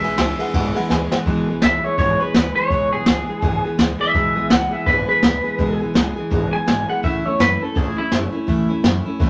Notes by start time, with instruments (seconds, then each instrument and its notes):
Already playing: clean electric guitar E5
0.02 upright bass B1, steel-string acoustic guitar G#3 B3 G#4, upright piano B4 E5 G#5, ride
0.06 steel-string acoustic guitar E3
0.17 upright bass C#2, steel-string acoustic guitar E3 G#3 B3, upright piano B4 E5 G#5, snare, ride
0.21 steel-string acoustic guitar G#4
0.38 steel-string acoustic guitar E3 G#3 B3 G#4, upright piano B4 E5 F#5, muted upright bass stroke, ride
0.53 upright bass G#1, steel-string acoustic guitar E2 B2 E3 G#3 B3 G#4, upright piano B4 E5 F#5, kick, ride
0.74 steel-string acoustic guitar G#3 B3 G#4, upright piano B4 E5 F#5, ride
0.78 steel-string acoustic guitar E3
0.89 upright bass D2, steel-string acoustic guitar E3 G#3 B3, upright piano B4 E5 G#5, snare
0.93 steel-string acoustic guitar G#4
1.10 steel-string acoustic guitar G#3 B3 G#4, upright piano B4 E5 F#5, snare
1.14 steel-string acoustic guitar E3
1.26 upright bass E1, steel-string acoustic guitar E2 B2 E3 G#3 B3 G#4, kick, open hi-hat
1.48 upright bass B1, steel-string acoustic guitar E3 G#3 B3 G#4
1.62 upright bass C#2, steel-string acoustic guitar E3 G#3 G#4, clean electric guitar E5, snare, open hi-hat
1.83 steel-string acoustic guitar E3 G#3 B3 G#4, clean electric guitar C#5, muted upright bass stroke
1.98 upright bass G#1, steel-string acoustic guitar E2 B2 E3 G#3 B3 G#4, clean electric guitar C#5, kick, open hi-hat
2.20 steel-string acoustic guitar E3 G#3 B3 G#4, clean electric guitar B4, muted upright bass stroke
2.34 upright bass D2, steel-string acoustic guitar E3 G#3 B3 G#4, snare, open hi-hat
2.56 steel-string acoustic guitar E3 G#3 B3 G#4, clean electric guitar C#5, muted upright bass stroke
2.70 upright bass E1, steel-string acoustic guitar E2 B2 E3 G#3 B3 G#4, kick, open hi-hat
2.92 upright bass B1, steel-string acoustic guitar E3 G#3 B3 G#4, clean electric guitar G#4
3.06 upright bass C#2, steel-string acoustic guitar E3 G#3 B3 G#4, snare, open hi-hat
3.27 steel-string acoustic guitar E3 G#3 B3 G#4, muted upright bass stroke
3.42 upright bass G#1, steel-string acoustic guitar E2 B2 E3 G#3 B3 G#4, kick, open hi-hat
3.64 steel-string acoustic guitar E3 G#3 B3 G#4, muted upright bass stroke
3.78 upright bass D2, steel-string acoustic guitar E3 G#3 B3 G#4, snare, open hi-hat
3.99 steel-string acoustic guitar E3 G#3 B3 G#4, clean electric guitar E5
4.14 upright bass E1, steel-string acoustic guitar E2 B2 E3 G#3 B3 G#4, kick, open hi-hat
4.35 upright bass B1, steel-string acoustic guitar E3 G#3 B3 G#4
4.49 upright bass C#2, steel-string acoustic guitar E3 G#3 B3 G#4, clean electric guitar F#5, snare, open hi-hat
4.71 steel-string acoustic guitar E3 G#3 B3 G#4, clean electric guitar E5, muted upright bass stroke
4.86 upright bass G#1, steel-string acoustic guitar E2 B2 E3 G#3 B3 G#4, clean electric guitar B4, kick, open hi-hat
5.08 steel-string acoustic guitar E3 G#3 B3 G#4, clean electric guitar B4, muted upright bass stroke
5.22 upright bass D2, steel-string acoustic guitar E3 G#3 B3 G#4, snare, open hi-hat
5.44 steel-string acoustic guitar E3 G#3 B3 G#4, muted upright bass stroke
5.58 upright bass E1, steel-string acoustic guitar E2 B2 E3 G#3 B3 G#4, kick, open hi-hat
5.80 upright bass B1, steel-string acoustic guitar E3 G#3 B3 G#4
5.94 upright bass C#2, steel-string acoustic guitar E3 G#3 B3 G#4, snare, open hi-hat
6.16 steel-string acoustic guitar E3 G#3 B3 G#4, muted upright bass stroke
6.30 upright bass G#1, steel-string acoustic guitar E2 B2 E3 G#3 B3 G#4, kick, open hi-hat
6.53 steel-string acoustic guitar E3 G#3 B3 G#4, clean electric guitar G#5, muted upright bass stroke
6.67 upright bass G#1, steel-string acoustic guitar E3 G#3 B3 G#4, snare, open hi-hat
6.88 steel-string acoustic guitar E3 G#3 B3 G#4, clean electric guitar F#5, muted upright bass stroke
7.03 upright bass A1, steel-string acoustic guitar A2 E3 A3 C#4 E4, clean electric guitar E5, kick, open hi-hat
7.25 upright bass E2, steel-string acoustic guitar A3 C#4 E4, clean electric guitar C#5
7.39 upright bass F#2, steel-string acoustic guitar E3 A3 C#4 E4, clean electric guitar B4, snare
7.60 steel-string acoustic guitar A3 C#4 E4, clean electric guitar A4
7.75 upright bass C#2, steel-string acoustic guitar A2 E3 A3 C#4 E4, clean electric guitar G#4, kick, open hi-hat
7.96 steel-string acoustic guitar A3 C#4 E4, clean electric guitar E4, muted upright bass stroke
8.11 upright bass F#1, steel-string acoustic guitar E3 A3 C#4 E4, snare, open hi-hat
8.32 steel-string acoustic guitar A3 C#4 E4
8.47 upright bass A1, steel-string acoustic guitar A2 E3 A3 C#4 E4, kick, open hi-hat
8.69 upright bass E2, steel-string acoustic guitar A3 C#4 E4
8.83 upright bass F#2, steel-string acoustic guitar E3 A3 C#4 E4, snare, open hi-hat
9.05 steel-string acoustic guitar A3 C#4 E4, muted upright bass stroke
9.19 upright bass C#2, steel-string acoustic guitar A2 E3 A3 C#4 E4, kick, open hi-hat